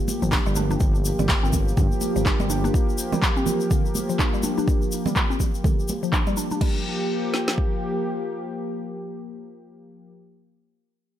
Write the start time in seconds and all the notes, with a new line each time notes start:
Already playing: F3 A#3 G4, impact
0.08 high conga, shaker
0.22 G1 F3, shaker
0.32 D4, kick, clap, high conga, shaker
0.46 G1 G3, shaker
0.56 D4, high conga, shaker
0.70 D4, high conga, shaker
0.80 G1, kick, shaker
0.95 shaker
1.05 shaker
1.19 G1 G3, high conga, low conga, shaker
1.29 kick, clap, shaker
1.43 G1 C4, shaker
1.53 kick, high conga, low conga, shaker
1.68 shaker
1.77 G2 D3, kick, high conga, shaker
1.92 shaker
2.01 high conga, shaker
2.16 G1 F3, shaker
2.26 D4, kick, clap, shaker
2.40 G1 G3, high conga, shaker
2.50 D4, shaker
2.64 D4, high conga, shaker
2.74 kick, shaker
2.89 shaker
2.98 shaker
3.12 G3, high conga, low conga, shaker
3.22 kick, clap, shaker
3.37 C4, shaker
3.46 high conga, low conga, shaker
3.60 shaker
3.71 D3, kick, shaker
3.85 shaker
3.95 high conga, shaker
4.09 F3, shaker
4.19 D4, kick, clap, high conga, shaker
4.34 G3, shaker
4.43 D4, high conga, shaker
4.58 D4, high conga, shaker
4.68 kick, shaker
4.82 shaker
4.92 shaker
5.06 G3, high conga, low conga, shaker
5.16 kick, clap, shaker
5.30 C4, shaker
5.40 kick, high conga, low conga, shaker
5.54 shaker
5.64 D3, kick, high conga, shaker
5.79 shaker
5.88 high conga, shaker
6.03 F3, shaker
6.13 D4, kick, clap, shaker
6.27 G3, high conga, shaker
6.37 D4, shaker
6.51 D4, high conga, shaker
6.61 F3 G3 A#3 G4, kick, crash
7.34 snare
7.48 snare
7.58 kick